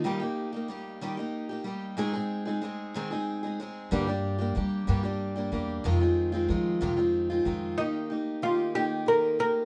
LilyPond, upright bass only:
\new Staff \with { instrumentName = "Upright bass" } { \clef bass \time 6/8 \key ees \major \tempo 4. = 62 r2. | r2. | g,4 g8 g,4 fes,8 | f,4 f8 f,4 f,8 |
r2. | }